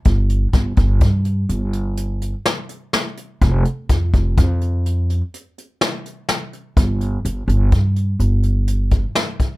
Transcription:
0.05 0.47 G1 medium
0.05 kick medium
0.05 closed hi-hat medium
0.29 closed hi-hat medium
0.53 0.74 G1 medium
0.53 kick medium
0.53 snare soft
0.53 closed hi-hat medium
0.76 0.98 G1 medium
0.76 kick medium
0.76 closed hi-hat medium
1.00 1.43 G2 medium
1.00 kick loud
1.00 closed hi-hat medium
1.25 closed hi-hat medium
1.49 2.32 G1 medium
1.49 closed hi-hat medium
1.73 closed hi-hat medium
1.97 closed hi-hat medium
2.22 closed hi-hat medium
2.46 snare loud
2.46 closed hi-hat medium
2.69 closed hi-hat medium
2.93 snare medium
2.93 closed hi-hat medium
3.17 closed hi-hat medium
3.41 3.62 F1 loud
3.41 kick medium
3.41 closed hi-hat medium
3.65 closed hi-hat medium
3.89 4.10 F2 medium
3.89 kick medium
3.89 closed hi-hat medium
4.14 4.34 F1 medium
4.14 kick medium
4.14 closed hi-hat medium
4.37 5.20 F2 medium
4.37 kick medium
4.37 closed hi-hat medium
4.61 closed hi-hat medium
4.86 closed hi-hat medium
5.10 closed hi-hat medium
5.34 closed hi-hat medium
5.58 closed hi-hat medium
5.81 snare loud
5.81 closed hi-hat medium
6.06 closed hi-hat medium
6.29 snare medium
6.29 closed hi-hat medium
6.53 closed hi-hat medium
6.77 7.18 G1 medium
6.77 kick medium
6.77 closed hi-hat medium
7.01 closed hi-hat medium
7.25 7.45 G1 medium
7.25 closed hi-hat medium
7.48 7.69 G1 medium
7.48 closed hi-hat medium
7.72 8.14 G2 medium
7.72 kick loud
7.72 closed hi-hat medium
7.96 closed hi-hat medium
8.19 9.02 G1 medium
8.19 closed hi-hat medium
8.43 closed hi-hat medium
8.68 closed hi-hat medium
8.91 kick medium
8.91 closed hi-hat medium
9.15 snare medium
9.15 closed hi-hat medium
9.39 kick medium
9.39 closed hi-hat medium

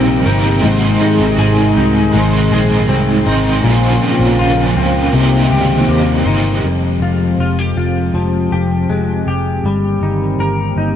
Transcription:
0.00 0.22 A#1 medium
0.00 3.60 C3 medium
0.00 0.61 F3 medium
0.00 0.26 G3 medium
0.00 0.64 G3 medium
0.00 0.61 A#3 medium
0.00 0.28 C4 medium
0.00 2.89 C4 medium
0.00 0.26 D#4 medium
0.00 0.31 D#4 medium
0.00 3.60 D#4 medium
0.00 0.61 G4 medium
0.00 0.24 A#4 medium
0.00 0.72 A#4 medium
0.25 0.59 G1 loud
0.25 0.65 C4 medium
0.25 1.01 D#4 medium
0.25 0.63 A#4 medium
0.31 0.64 D#4 soft
0.61 0.97 G#1 medium
0.61 3.64 G#2 medium
0.61 3.61 D#3 medium
0.61 2.11 G#3 medium
0.61 3.61 G#3 medium
0.61 2.13 D#4 loud
0.61 3.61 G#4 medium
0.68 2.16 C4 loud
0.68 2.17 C5 loud
1.01 1.76 D#4 medium
1.20 1.37 G#1 loud
1.38 1.72 G#1 medium
1.38 2.51 G#4 medium
1.77 2.10 C2 medium
1.77 3.25 D#4 medium
2.12 2.47 G#1 loud
2.12 3.26 G#3 medium
2.12 3.72 G#3 medium
2.12 3.27 D#4 medium
2.16 3.28 C4 medium
2.16 3.25 C5 medium
2.51 2.84 A#1 loud
2.51 3.72 G#4 medium
2.89 3.22 C2 medium
2.89 4.02 C4 medium
3.25 3.59 G#1 medium
3.25 3.65 C4 medium
3.25 3.72 D#4 medium
3.25 3.63 C5 medium
3.31 3.66 D#4 soft
3.61 3.97 A#1 loud
3.61 5.13 A#2 medium
3.61 5.14 A#2 medium
3.61 5.12 C#3 medium
3.61 5.13 F3 medium
3.61 6.61 A#3 medium
3.61 5.11 A#3 medium
3.61 5.13 F4 medium
3.61 6.61 C5 medium
3.67 5.14 C#4 medium
3.67 5.16 F4 loud
3.67 5.17 C5 loud
4.02 4.77 C4 medium
4.20 4.36 A#1 loud
4.38 4.72 A#1 loud
4.38 5.22 F4 medium
4.76 5.09 C#2 loud
4.76 5.92 C4 medium
5.12 5.47 C2 loud
5.12 6.72 C3 medium
5.12 6.63 D#3 medium
5.12 6.63 G3 medium
5.12 6.26 A#3 medium
5.12 6.27 D#4 medium
5.12 6.62 G4 medium
5.16 6.26 G4 medium
5.16 6.24 C5 medium
5.51 5.84 C#2 medium
5.51 7.05 G4 medium
5.88 6.22 D#2 medium
5.88 6.72 A#3 medium
6.25 6.59 G1 medium
6.25 6.72 D#4 medium
6.25 6.65 D#4 soft
6.25 6.64 G4 medium
6.25 6.63 C5 medium
6.30 6.66 A#3 soft
6.63 6.97 F1 medium
6.63 9.64 F2 medium
6.63 9.61 F3 medium
6.63 9.61 G#3 medium
6.63 9.61 C4 medium
6.63 10.96 G4 medium
7.00 7.34 F1 medium
7.00 7.39 F4 soft
7.39 7.72 F1 medium
7.39 7.59 F4 medium
7.59 8.51 G4 soft
7.76 8.09 F1 medium
7.76 9.72 F4 soft
8.14 8.47 F1 loud
8.14 9.65 F3 medium
8.52 8.85 F1 medium
8.52 9.27 G4 medium
8.89 9.22 F1 medium
8.89 9.72 G#3 medium
9.27 9.60 F1 medium
9.27 10.40 G4 medium
9.64 9.97 G1 medium
9.64 10.96 D#3 medium
9.64 10.96 G3 medium
9.64 10.96 A#3 medium
9.64 10.96 C4 medium
10.01 10.35 G1 medium
10.01 10.77 D#4 soft
10.39 10.72 G1 medium
10.39 10.96 A#4 medium
10.77 10.96 G1 medium
10.77 10.96 D#4 soft

